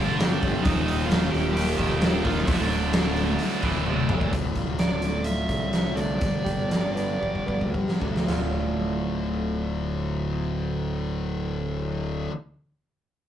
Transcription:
Already playing: fingered electric bass G1, distorted electric guitar G2 D3 G3, lead electric guitar D4
0.00 distorted electric guitar G2
0.18 distorted electric guitar G2 D3 G3, snare, open hi-hat
0.42 fingered electric bass G1, kick, open hi-hat
0.63 fingered electric bass D#1, distorted electric guitar D#2 A#2 D#3, lead electric guitar D#4, kick, open hi-hat
0.68 distorted electric guitar A#2 D#3
0.88 open hi-hat
1.06 lead electric guitar F4
1.11 snare, open hi-hat
1.30 fingered electric bass D#1, lead electric guitar G4, open hi-hat
1.53 distorted electric guitar D#2, lead electric guitar G4, open hi-hat
1.58 distorted electric guitar A#2 D#3
1.77 fingered electric bass D#1, distorted electric guitar A#2 D#3, kick, open hi-hat
1.81 distorted electric guitar D#2
2.00 distorted electric guitar D#2 A#2 D#3, snare, open hi-hat
2.24 fingered electric bass D#1, lead electric guitar F4, kick, snare, open hi-hat
2.45 fingered electric bass D1, distorted electric guitar D2 A2, lead electric guitar E4, kick, open hi-hat
2.50 distorted electric guitar A2 D3
2.68 lead electric guitar D4, open hi-hat
2.93 snare, open hi-hat
3.17 open hi-hat
3.39 distorted electric guitar D2 A2, open hi-hat
3.44 distorted electric guitar D3
3.61 fingered electric bass D1, distorted electric guitar D2 A2 D3, kick, open hi-hat
3.85 distorted electric guitar D2 A2, high tom
3.89 distorted electric guitar D3
4.09 fingered electric bass D1, mid tom
4.21 kick
4.31 fingered electric bass D1, distorted electric guitar D2 A2 D3, steel-string acoustic guitar D2, kick, closed hi-hat
4.55 fingered electric bass D1, steel-string acoustic guitar F4, kick, closed hi-hat
4.79 steel-string acoustic guitar A3, lead electric guitar D5, snare, closed hi-hat
5.02 steel-string acoustic guitar D3, closed hi-hat
5.24 steel-string acoustic guitar F4, lead electric guitar E5, closed hi-hat
5.48 fingered electric bass C2, steel-string acoustic guitar D3, kick, closed hi-hat
5.72 steel-string acoustic guitar A2, snare, closed hi-hat
5.96 distorted electric guitar A2 D3, steel-string acoustic guitar A3, lead electric guitar D5, closed hi-hat
6.00 distorted electric guitar D2
6.20 fingered electric bass G1, steel-string acoustic guitar G2, distorted electric guitar G2 D3, kick, closed hi-hat
6.25 distorted electric guitar G3
6.44 fingered electric bass G1, steel-string acoustic guitar G4, kick, closed hi-hat
6.70 steel-string acoustic guitar D4, snare, closed hi-hat
6.95 steel-string acoustic guitar B3, closed hi-hat
7.21 fingered electric bass G1, steel-string acoustic guitar G4, kick
7.35 fingered electric bass G1, kick
7.46 fingered electric bass G1, steel-string acoustic guitar B3, kick
7.61 fingered electric bass D2, kick
7.74 fingered electric bass G2, steel-string acoustic guitar G3, kick
7.88 snare
8.01 fingered electric bass D2, distorted electric guitar D3 G3, steel-string acoustic guitar D4, kick
8.05 distorted electric guitar G2
8.16 snare
8.25 steel-string acoustic guitar D2 A2 D3 A3 F4, distorted electric guitar D2, floor tom, splash
8.29 fingered electric bass D1, distorted electric guitar A2 D3, snare

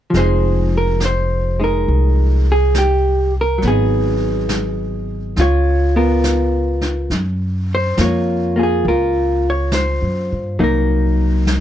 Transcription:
0.10 upright bass F1, hollow-body jazz guitar F3, brush sweep, snare
0.15 hollow-body jazz guitar G#3 D#4 C5
0.19 hollow-body jazz guitar G#4
0.78 hollow-body jazz guitar A#4
1.00 snare, hi-hat pedal
1.05 hollow-body jazz guitar C5
1.60 hollow-body jazz guitar G#3 D#4
1.64 hollow-body jazz guitar A#4
1.88 upright bass C2, brush sweep
2.52 hollow-body jazz guitar G#4
2.74 hollow-body jazz guitar G4, snare, hi-hat pedal
3.41 hollow-body jazz guitar A#4
3.58 hollow-body jazz guitar F#3, brush sweep, snare
3.63 upright bass G#1, hollow-body jazz guitar B3
3.68 hollow-body jazz guitar D#4 G#4
4.49 snare, hi-hat pedal
5.36 upright bass C#2, hollow-body jazz guitar F4, brush sweep, snare
5.41 hollow-body jazz guitar C#5
5.96 hollow-body jazz guitar B3 F4 A#4
6.24 snare, hi-hat pedal
6.81 snare
7.10 upright bass F#2, brush sweep, snare
7.75 hollow-body jazz guitar C5
7.97 upright bass F2, hollow-body jazz guitar A#3 F4 C#5, snare, hi-hat pedal
8.56 hollow-body jazz guitar A#3 F4 G#4
8.63 hollow-body jazz guitar G#4
8.85 upright bass C#2, hollow-body jazz guitar F4 A#4, brush sweep
9.50 hollow-body jazz guitar C#5
9.72 hollow-body jazz guitar C5, snare, hi-hat pedal
10.02 upright bass F#2
10.32 upright bass G2
10.59 upright bass C2, hollow-body jazz guitar F#3 A#3 D#4, brush sweep
10.64 hollow-body jazz guitar A#4
11.47 snare, hi-hat pedal

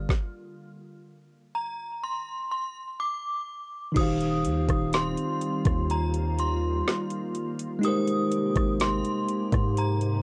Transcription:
0.09 kick, snare
1.55 synth bell A#5
2.03 synth bell C6
2.52 synth bell C6
3.00 synth bell D6
3.92 808-style bass D#1, tine electric piano D#3 D#4, closed hi-hat, crash
3.96 ambient pad D#3 G3 C4 F4, tine electric piano F#4 C5, synth bell D#6, kick
4.01 tine electric piano G4 F5
4.21 closed hi-hat
4.45 808-style bass D#2, closed hi-hat
4.69 808-style bass D#1, kick, cross-stick, closed hi-hat
4.93 synth bell C6, snare, closed hi-hat
5.17 closed hi-hat
5.41 closed hi-hat
5.65 808-style bass D#2, kick, cross-stick, closed hi-hat
5.90 ambient pad A#3, synth bell A#5, closed hi-hat
6.14 closed hi-hat
6.38 synth bell C6, closed hi-hat
6.88 snare
7.10 closed hi-hat
7.35 closed hi-hat
7.59 closed hi-hat
7.79 tine electric piano G#3 D#4
7.83 ambient pad C3 G#3 G4, tine electric piano G4 A#4, synth bell D#6, closed hi-hat
7.88 tine electric piano C5
8.07 closed hi-hat
8.32 closed hi-hat
8.56 808-style bass G#1, kick, cross-stick, closed hi-hat
8.80 synth bell C6, snare, closed hi-hat
9.05 closed hi-hat
9.29 closed hi-hat
9.52 808-style bass G#2, kick, cross-stick, closed hi-hat
9.77 synth bell A#5, closed hi-hat
10.01 closed hi-hat

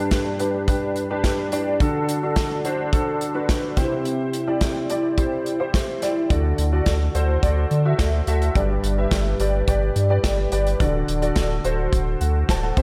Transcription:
Already playing: grand piano G2 D4 G4 B4
0.11 kick, snare, closed hi-hat
0.39 grand piano D4 G4 B4, closed hi-hat
0.68 grand piano D4 G4 B4, kick, closed hi-hat
0.96 closed hi-hat
1.10 grand piano D4 G4 B4
1.24 kick, snare, closed hi-hat
1.52 grand piano D4 G4 D5, closed hi-hat
1.80 grand piano D3 D4 F#4 A4, kick, closed hi-hat
2.09 closed hi-hat
2.23 grand piano D4 F#4 A4
2.36 kick, snare, closed hi-hat
2.65 grand piano D4 F#4 C5, closed hi-hat
2.93 grand piano D4 F#4 A4, kick, closed hi-hat
3.21 closed hi-hat
3.34 grand piano D4 F#4 B4
3.49 kick, snare, closed hi-hat
3.77 grand piano C3 E4 G4 C5, kick, snare, closed hi-hat
4.05 closed hi-hat
4.33 closed hi-hat
4.47 grand piano E4 G4 D5
4.61 kick, snare, closed hi-hat
4.90 grand piano E4 G4 D5, closed hi-hat
5.18 grand piano E4 G4 C5, kick, closed hi-hat
5.46 closed hi-hat
5.60 grand piano E4 G4 C5
5.74 kick, snare, closed hi-hat
6.02 grand piano E4 G4 D5, snare, closed hi-hat
6.30 sub bass D2, grand piano D3 F#4 A4 D5, kick, closed hi-hat
6.58 sub bass D2, closed hi-hat
6.72 grand piano F#4 A4 D5
6.86 sub bass D2, kick, snare, closed hi-hat
7.15 sub bass D2, grand piano F#4 A4 C5, closed hi-hat
7.43 sub bass D2, grand piano F#4 A4 D5, kick, closed hi-hat
7.71 sub bass D3, closed hi-hat
7.85 grand piano F#4 A4 E5
7.99 sub bass D2, kick, snare, closed hi-hat
8.27 sub bass D2, grand piano F#4 A4 E5, closed hi-hat
8.42 closed hi-hat
8.55 sub bass G1, grand piano G2 G4 B4 D5, kick, closed hi-hat
8.83 sub bass G1, closed hi-hat
8.98 grand piano G4 B4 E5
9.11 sub bass G1, kick, snare, closed hi-hat
9.40 sub bass G1, grand piano G4 B4 D5, closed hi-hat
9.68 sub bass G1, grand piano G4 B4 D5, kick, closed hi-hat
9.96 sub bass G2, closed hi-hat
10.10 grand piano G4 B4 D5
10.24 sub bass G1, kick, snare, closed hi-hat
10.52 sub bass G1, grand piano G4 B4 D5, closed hi-hat
10.67 closed hi-hat
10.80 sub bass D1, grand piano D3 F#4 A4 D5, kick, closed hi-hat
11.08 sub bass D1, closed hi-hat
11.22 grand piano F#4 A4 D5, closed hi-hat
11.36 sub bass D1, kick, snare, closed hi-hat
11.64 sub bass D1, grand piano F#4 A4 C5, closed hi-hat
11.93 sub bass D1, kick, closed hi-hat
12.21 sub bass D2, grand piano A4 F#5, closed hi-hat
12.49 sub bass D1, grand piano C5 A5, kick, snare, closed hi-hat
12.63 grand piano A4 F#5
12.77 sub bass C2, grand piano C3 E4 G4 C5, kick, closed hi-hat

